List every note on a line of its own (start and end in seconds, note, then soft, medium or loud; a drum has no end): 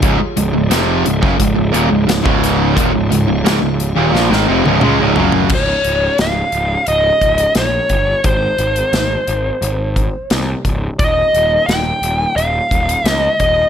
0.02 0.19 C#1 medium
0.02 0.19 C#2 loud
0.02 0.19 G#2 medium
0.02 2.74 F4 medium
0.02 2.74 G#4 medium
0.02 2.74 C#5 medium
0.02 kick loud
0.02 closed hi-hat medium
0.19 muted overdriven electric guitar stroke medium
0.19 muted distorted electric guitar stroke medium
0.19 muted picked electric bass stroke soft
0.37 0.54 C#1 medium
0.37 0.52 C#2 medium
0.37 0.52 G#2 medium
0.37 closed hi-hat medium
0.53 0.71 C#1 medium
0.53 0.70 C#2 medium
0.53 0.70 G#2 medium
0.70 1.04 F1 medium
0.70 1.04 F2 medium
0.70 1.04 C3 medium
0.70 1.05 F3 loud
0.70 snare loud
0.70 closed hi-hat loud
1.05 1.22 C#1 medium
1.05 1.20 C#2 medium
1.05 1.21 G#2 medium
1.05 closed hi-hat medium
1.21 1.39 F#1 medium
1.21 1.37 F#2 medium
1.21 1.37 C#3 loud
1.21 kick loud
1.37 1.56 C#1 medium
1.37 1.53 C#2 medium
1.37 1.54 G#2 medium
1.37 kick medium
1.37 closed hi-hat loud
1.55 1.73 C#1 medium
1.55 1.71 C#2 medium
1.55 1.72 G#2 medium
1.72 1.90 D#1 medium
1.72 1.89 D#2 medium
1.72 1.89 A#2 loud
1.72 closed hi-hat medium
1.90 2.06 C#1 medium
1.90 2.06 C#2 medium
1.90 2.06 G#2 medium
2.07 2.24 C#1 medium
2.07 2.22 C#2 medium
2.07 2.23 G#2 medium
2.07 snare loud
2.07 closed hi-hat loud
2.24 2.73 C#1 medium
2.24 2.75 C#2 medium
2.24 2.75 G#2 medium
2.24 2.75 C#3 loud
2.24 kick loud
2.44 snare soft
2.44 closed hi-hat medium
2.76 2.93 D#1 medium
2.76 2.92 D#2 medium
2.76 2.92 A#2 loud
2.76 5.48 F4 medium
2.76 5.48 G#4 medium
2.76 5.48 C#5 medium
2.76 5.48 F5 medium
2.76 kick loud
2.76 closed hi-hat loud
2.93 3.10 C#1 medium
2.93 3.09 C#2 medium
2.93 3.10 G#2 medium
3.10 3.27 C#1 medium
3.10 3.27 C#2 medium
3.10 3.27 G#2 medium
3.10 closed hi-hat medium
3.28 3.44 C#1 medium
3.28 3.43 C#2 medium
3.28 3.43 G#2 medium
3.44 3.61 C#1 medium
3.44 3.60 C#2 medium
3.44 3.60 G#2 medium
3.44 snare loud
3.44 closed hi-hat medium
3.61 3.94 C#1 medium
3.61 3.89 C#2 medium
3.61 3.89 G#2 medium
3.80 closed hi-hat medium
3.96 4.13 D#1 medium
3.96 4.13 D#2 medium
3.96 4.12 A#2 loud
4.13 4.30 A#1 medium
4.13 4.30 A#2 medium
4.13 4.30 F3 loud
4.13 snare medium
4.30 4.47 G#1 medium
4.30 4.47 G#2 medium
4.30 4.47 D#3 medium
4.30 snare medium
4.48 4.64 F1 medium
4.48 4.64 F2 medium
4.48 4.64 C3 loud
4.64 4.81 C#1 medium
4.64 4.82 C#2 medium
4.64 4.82 G#2 medium
4.64 high tom medium
4.81 4.98 C#2 medium
4.81 4.99 C#3 medium
4.81 4.99 G#3 loud
4.81 mid tom medium
4.99 5.15 C#1 medium
4.99 5.16 C#2 medium
4.99 5.16 G#2 loud
5.16 5.48 F#1 medium
5.16 5.50 F#2 medium
5.16 5.51 C#3 medium
5.16 5.51 F#3 medium
5.16 floor tom medium
5.32 floor tom medium
5.49 5.73 C#1 medium
5.49 kick loud
5.49 crash medium
5.54 6.17 C#5 medium
5.84 6.07 C#1 medium
5.84 closed hi-hat medium
6.18 6.41 C#1 medium
6.18 6.85 F5 medium
6.18 snare loud
6.18 closed hi-hat medium
6.52 6.75 C#1 medium
6.52 closed hi-hat soft
6.87 7.10 C#1 medium
6.87 7.53 D#5 medium
6.87 closed hi-hat medium
7.21 7.44 C#1 medium
7.21 kick medium
7.21 closed hi-hat soft
7.38 closed hi-hat medium
7.55 7.78 A#1 medium
7.55 8.26 C#5 medium
7.55 snare loud
7.55 closed hi-hat medium
7.89 8.12 G1 medium
7.89 kick medium
7.89 closed hi-hat soft
8.24 8.47 G#1 medium
8.24 10.62 C5 medium
8.24 kick loud
8.24 closed hi-hat medium
8.58 8.81 G#1 medium
8.58 closed hi-hat medium
8.76 closed hi-hat soft
8.93 9.15 G#1 medium
8.93 snare medium
8.93 closed hi-hat medium
9.27 9.50 G#1 medium
9.27 closed hi-hat soft
9.62 10.07 G#1 medium
9.62 closed hi-hat medium
9.96 kick medium
9.96 closed hi-hat soft
10.30 10.53 C2 medium
10.30 snare loud
10.30 closed hi-hat medium
10.65 10.87 C#1 medium
10.65 kick medium
10.65 closed hi-hat soft
10.99 11.22 D#1 medium
10.99 11.70 D#5 medium
10.99 kick loud
10.99 closed hi-hat medium
11.34 11.57 D#1 medium
11.34 closed hi-hat medium
11.66 11.91 D#1 medium
11.66 12.36 G5 medium
11.66 snare medium
11.66 closed hi-hat soft
12.02 12.24 D#1 medium
12.02 closed hi-hat medium
12.36 12.59 D#1 medium
12.36 13.11 F5 medium
12.36 closed hi-hat medium
12.71 12.94 D#1 medium
12.71 kick medium
12.71 closed hi-hat soft
12.89 closed hi-hat medium
13.04 13.27 C#2 medium
13.04 snare loud
13.04 closed hi-hat medium
13.11 13.41 D#5 medium
13.40 13.62 D#1 medium
13.40 13.69 D#5 medium
13.40 kick medium
13.40 closed hi-hat medium